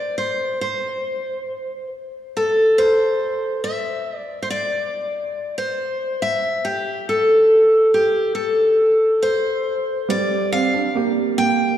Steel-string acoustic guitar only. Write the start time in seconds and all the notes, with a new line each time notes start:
Already playing: D5
0.18 C5
0.61 C5
2.37 A4
2.78 C5
3.64 E5
4.18 D5
4.42 C5
4.50 D5
5.58 C5
6.22 E5
6.65 G4
7.09 A4
7.94 G4
8.35 A4
9.22 C5
10.10 D5
10.52 F5
11.38 G5